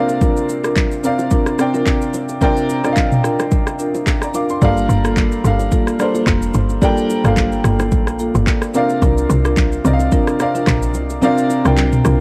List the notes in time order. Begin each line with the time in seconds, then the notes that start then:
Already playing: C3 C4 A#4 D5 F5
0.09 high bongo, shaker
0.21 D4 F4 A#4, kick, low conga, shaker
0.37 shaker
0.49 low bongo, shaker
0.63 D4 F4 A#4, cross-stick, high bongo, shaker
0.76 kick, clap, high bongo, low conga, shaker
0.92 shaker
1.03 C3 C4 A#4 D5 F5, shaker
1.19 low bongo, shaker
1.31 D4 F4 A#4, kick, low conga, shaker
1.46 cross-stick, shaker
1.58 C3 C4 A#4 D5 G5, cross-stick, shaker
1.74 D4 F4 A#4, low bongo, shaker
1.86 kick, clap, high bongo, shaker
2.02 shaker
2.14 low bongo, shaker
2.29 high bongo, shaker
2.41 C3 C4 D4 F4 A#4 D5 G5, kick, low conga, shaker
2.57 shaker
2.70 low bongo, shaker
2.83 C3 C4 D4 F4 A#4 D5 D#5, cross-stick, high bongo, shaker
2.93 F5, shaker
2.97 kick, clap, high bongo, low conga
3.12 mid tom, shaker
3.24 D4 F4 A#4, cross-stick, shaker
3.40 cross-stick, low bongo, shaker
3.52 kick, low conga, shaker
3.67 cross-stick, shaker
3.79 D4 F4 A#4, shaker
3.95 low bongo, shaker
4.07 kick, clap, high bongo, shaker
4.22 D5 A#5, cross-stick, shaker
4.34 D4 F4 A#4 F5 D6, low bongo, shaker
4.49 C6, high bongo, shaker
4.61 G1 G3 A#3 D4 F4 A4 A#4 F5, kick, low conga, shaker
4.77 shaker
4.89 G1, low bongo, shaker
5.04 A#3 F4 A4, cross-stick, high bongo, shaker
5.17 kick, clap, high bongo, low conga, shaker
5.32 shaker
5.44 G1 G3 D4 A4 A#4 F5, shaker
5.59 low bongo, shaker
5.71 A#3 F4 A4, kick, low conga, shaker
5.87 cross-stick, shaker
5.99 G3 D4 A4 A#4 C5, cross-stick, shaker
6.14 A#3 F4 A4, low bongo, shaker
6.27 F1, kick, clap, high bongo, shaker
6.42 shaker
6.54 G1, low bongo, shaker
6.69 high bongo, shaker
6.82 G3 A#3 D4 F4 A4 A#4 G5, kick, low conga, shaker
6.97 shaker
7.10 low bongo, shaker
7.24 G1 G3 A#3 D4 F4 A4 A#4 F5, cross-stick, high bongo, shaker
7.37 kick, clap, high bongo, low conga, shaker
7.52 shaker
7.64 G1 A#3 F4 A4, cross-stick, shaker
7.79 cross-stick, low bongo, shaker
7.92 A#1, kick, low conga, shaker
8.07 cross-stick, shaker
8.19 A#3 F4 A4, shaker
8.35 G1, low bongo, shaker
8.47 kick, clap, high bongo, shaker
8.62 cross-stick, shaker
8.74 C3 C4 D4 F4 A#4 D5 F5, low bongo, shaker
8.89 high bongo, shaker
9.02 C2 D4 F4 A#4, kick, low conga, shaker
9.18 shaker
9.30 C2, low bongo, shaker
9.45 D4 F4 A#4, cross-stick, high bongo, shaker
9.57 kick, clap, high bongo, low conga, shaker
9.72 shaker
9.84 C2 C3 C4 A#4 D5 D#5, shaker
9.93 F5
9.99 low bongo, shaker
10.12 D4 F4 A#4, kick, low conga, shaker
10.27 cross-stick, shaker
10.39 C3 C4 A#4 D5 F5, cross-stick, shaker
10.55 D4 F4 A#4, low bongo, shaker
10.67 A#1, kick, clap, high bongo, shaker
10.82 shaker
10.94 C2, low bongo, shaker
11.10 high bongo, shaker
11.21 C3 C4 D4 F4 A#4 D5 F5, low conga, shaker
11.38 shaker
11.50 low bongo, shaker
11.64 C2 C3 C4 D4 F4 A#4 D5 G5, cross-stick, high bongo, shaker
11.77 clap, high bongo, low conga, shaker
11.93 mid tom, shaker
12.05 C2 D4 F4 A#4, cross-stick, shaker